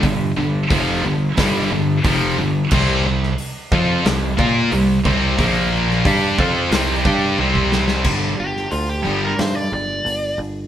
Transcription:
<<
  \new Staff \with { instrumentName = "Lead electric guitar" } { \time 4/4 \key g \minor \tempo 4 = 90 r1 | r1 | r1 | r8 g'8 f'16 g'8 bes'16 c''16 d''16 d''4 r8 | }
  \new Staff \with { instrumentName = "Distorted electric guitar" } { \clef bass \time 4/4 \key g \minor <g, d>8 <g, d>8 <f, c f>8 <g, d>8 <g, d g>8 <g, d>8 <f, c f>8 <g, d>8 | <c g c'>8 <c g>8 r8 <f c' f'>8 <c g>8 <bes f' bes'>8 <c g>8 <c g c'>8 | <bes, f bes>4 <g d' g'>8 <f c' f'>8 <c g c'>8 <g d' g'>8 <c g c'>4 | <g, d g>8 r4 <g, d g>8 r2 | }
  \new Staff \with { instrumentName = "Distorted electric guitar" } { \clef bass \time 4/4 \key g \minor <g, d>8 <g, d>8 <f, c f>8 <g, d>8 <g, d g>8 <g, d>8 <f, c f>8 <g, d>8 | <c g c'>8 <c g>8 r8 <f c' f'>8 <c g>8 <bes f' bes'>8 <c g>8 <c g c'>8 | <bes, f bes>4 <g d' g'>8 <f c' f'>8 <c g c'>8 <g d' g'>8 <c g c'>4 | <g, d g>8 r4 <g, d g>8 r2 | }
  \new Staff \with { instrumentName = "Distorted electric guitar" } { \clef bass \time 4/4 \key g \minor <g, d>8 <g, d>8 <f, c f>8 <g, d>8 <g, d g>8 <g, d>8 <f, c f>8 <g, d>8 | <c g c'>8 <c g>8 r8 <f c' f'>8 <c g>8 <bes f' bes'>8 <c g>8 <c g c'>8 | <bes, f bes>4 <g d' g'>8 <f c' f'>8 <c g c'>8 <g d' g'>8 <c g c'>4 | r1 | }
  \new Staff \with { instrumentName = "Picked electric bass" } { \clef bass \time 4/4 \key g \minor g,,8 g,,8 f,,8 g,,8 g,,8 g,,8 f,,8 g,,8 | c,8 c,8 r8 f,8 c,8 bes,8 c,8 c,8 | bes,,4 g,8 f,8 c,8 g,8 c,4 | g,,8 g,,8 d,8 g,,8 g,8 g,,8 g,,8 g,,8 | }
  \new DrumStaff \with { instrumentName = "Drums" } \drummode { \time 4/4 <hho bd>4 <hho bd>4 <hho bd sn>4 <hho bd>4 | <cymc bd>8. sn16 hho8 bd8 <hho sn>8 bd8 hho8 bd8 | <hho bd>8. sn16 <hho bd>8 bd8 <hho sn>8 bd8 tommh16 bd16 sn16 sn16 | <cymc bd>8. sn16 hho4 <hho sn>4 hho4 | }
>>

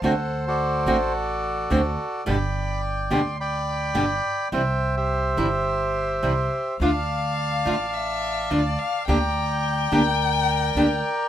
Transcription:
<<
  \new Staff \with { instrumentName = "Violin" } { \time 4/4 \key d \minor \tempo 4 = 107 r1 | r1 | r1 | f''2 e''4 d''8 f''8 |
g''1 | }
  \new Staff \with { instrumentName = "Bandoneon" } { \time 4/4 \key d \minor << { fis''8. d''2.~ d''16 | b''4 r8 c'''8 b''2 | g''8. e''2.~ e''16 | a''1 |
bes''4. g''2~ g''8 | } \\ { <a' c''>8. <fis' a'>2.~ <fis' a'>16 | <d'' g''>2 <d'' g''>2 | <c'' e''>8. <g' c''>2.~ <g' c''>16 | <d'' f''>1 |
<d'' g''>4. <bes' d''>2~ <bes' d''>8 | } >> }
  \new Staff \with { instrumentName = "Nylon-string guitar" } { \time 4/4 \key d \minor <d a c' fis'>8 r4 <d a c' fis'>8 r4 <d a c' fis'>8 r8 | <b, d g b g'>8 r4 <b, d g b g'>8 r4 <b, d g b g'>8 r8 | <c e g c' e'>8 r4 <c e g c' e'>8 r4 <c e g c' e'>8 r8 | <d a d' f'>8 r4 <d a d' f'>8 r4 <d a d' f'>8 r8 |
<d bes d' g'>8 r4 <d bes d' g'>8 r4 <d bes d' g'>8 r8 | }
  \new Staff \with { instrumentName = "Upright bass" } { \clef bass \time 4/4 \key d \minor d,4. a,,4. d,8 r8 | g,,4. d,4. g,,8 r8 | c,4. g,,4. c,8 r8 | d,4. a,,4. d,8 r8 |
d,4. d,4. d,8 r8 | }
>>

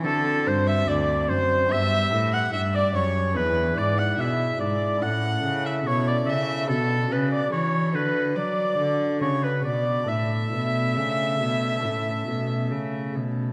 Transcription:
<<
  \new Staff \with { instrumentName = "Oboe" } { \time 4/4 \key a \mixolydian \tempo 4 = 72 a'8 c''16 e''16 d''8 c''8 e''8. fis''16 e''16 d''16 cis''8 | b'8 d''16 fis''16 e''8 d''8 fis''8. e''16 cis''16 d''16 e''8 | a'8 b'16 d''16 cis''8 b'8 d''8. r16 cis''16 b'16 d''8 | e''2.~ e''8 r8 | }
  \new Staff \with { instrumentName = "Violin" } { \time 4/4 \key a \mixolydian a'8 c''16 e''16 d''8 c''8 e''8. fis''16 e''16 d''16 cis''8 | b'8 d''16 fis''16 e''8 d''8 fis''8. e''16 cis''16 d''16 e''8 | a'8 b'16 d''16 cis''8 b'8 d''4 cis''16 b'16 d''8 | e''2.~ e''8 r8 | }
  \new Staff \with { instrumentName = "Pipe organ" } { \time 4/4 \key a \mixolydian <c' d' fis'>2 <b d' g'>2 | <d' e' gis'>2 <cis' e' a'>2 | <d' fis'>1 | <a d' a'>2 <a cis' a'>2 | }
  \new Staff \with { instrumentName = "Pipe organ" } { \clef bass \time 4/4 \key a \mixolydian d8 g,8 d,8 fis,8 g,8 a,8 g,8 fis,8 | e,8 gis,8 b,8 gis,8 a,8 cis8 b,8 cis8 | b,8 cis8 e8 d8 fis8 d8 cis8 b,8 | a,8 b,8 cis8 b,8 a,8 b,8 cis8 b,8 | }
  \new Staff \with { instrumentName = "Cello" } { \clef bass \time 4/4 \key a \mixolydian d8 g,8 d,8 fis,8 g,8 a,8 g,8 fis,8 | e,8 gis,8 b,8 gis,8 a,8 cis8 b,8 cis8 | b,8 cis8 e8 d8 fis8 d8 cis8 b,8 | a,8 b,8 cis8 b,8 a,8 b,8 cis8 b,8 | }
>>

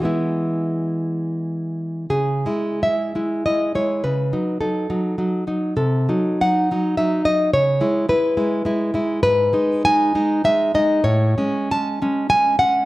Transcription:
\new Staff \with { instrumentName = "Nylon-string guitar" } { \time 3/4 \key e \major \tempo 4 = 101 << { e'2 r4 | \key cis \minor gis'4 e''4 dis''8 cis''8 | b'4 a'4. r8 | a'4 ges''4 e''8 ees''8 |
cis''4 b'4. r8 | \key gis \phrygian b'4 gis''4 e''8 dis''8 | cis''4 a''4 gis''8 fis''8 | } \\ { <e gis b>2. | cis8 <gis e'>8 <gis e'>8 <gis e'>8 <gis e'>8 <gis e'>8 | cis8 <fis dis'>8 <fis dis'>8 <fis dis'>8 <fis dis'>8 <fis dis'>8 | c8 <ges ees'>8 <ges ees'>8 <ges ees'>8 <ges ees'>8 <ges ees'>8 |
cis8 <gis e'>8 <gis e'>8 <gis e'>8 <gis e'>8 <gis e'>8 | gis,8 <gis dis'>8 <gis dis'>8 <gis dis'>8 <gis dis'>8 <gis dis'>8 | a,8 <gis cis'>8 <gis cis'>8 <gis cis'>8 <gis cis'>8 <gis cis'>8 | } >> }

